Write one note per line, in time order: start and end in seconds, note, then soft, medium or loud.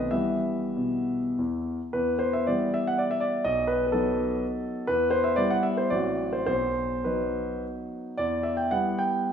0.00 0.14 B1 soft
0.00 0.14 D#3 soft
0.00 0.13 A3 soft
0.00 0.13 C4 soft
0.00 0.13 B4 medium
0.00 0.11 D#5 medium
0.11 0.57 E3 soft
0.11 0.63 G3 soft
0.11 0.63 B3 soft
0.11 1.38 E5 medium
0.76 1.20 B2 soft
1.39 1.77 E2 soft
1.93 2.46 E2 soft
1.93 2.19 B4 medium
2.19 2.33 C5 medium
2.33 2.47 E5 medium
2.47 3.41 E3 soft
2.47 3.42 G3 soft
2.47 3.42 B3 soft
2.47 2.74 D5 medium
2.74 2.87 E5 medium
2.87 2.99 F#5 medium
2.98 3.10 D5 medium
3.11 3.22 E5 medium
3.20 3.44 D5 medium
3.45 3.92 B1 soft
3.45 3.68 D#5 medium
3.67 3.85 B4 medium
3.87 3.93 B4 soft
3.92 4.84 F#3 soft
3.92 4.84 B3 soft
3.92 4.85 D#4 soft
3.92 4.88 A4 medium
4.87 5.36 E2 soft
4.87 5.11 B4 medium
5.11 5.24 C5 medium
5.24 5.37 E5 medium
5.36 5.87 G3 soft
5.36 5.87 B3 soft
5.36 5.88 E4 soft
5.36 5.50 D5 medium
5.50 5.64 F#5 medium
5.63 5.77 E5 medium
5.77 5.91 C5 medium
5.90 6.46 A1 soft
5.90 6.44 F#3 soft
5.90 6.44 C4 soft
5.90 6.44 F#4 soft
5.90 6.33 D5 medium
6.33 6.45 C5 medium
6.46 7.04 B1 soft
6.46 7.05 C5 medium
7.04 8.14 F#3 soft
7.04 8.14 B3 soft
7.04 8.14 D#4 soft
7.04 7.62 B4 soft
8.17 8.70 E2 soft
8.17 8.44 D5 medium
8.43 8.57 E5 medium
8.57 8.71 G5 medium
8.71 9.33 G3 soft
8.71 9.33 B3 soft
8.71 9.33 E4 soft
8.71 8.99 F#5 medium
8.98 9.33 G5 medium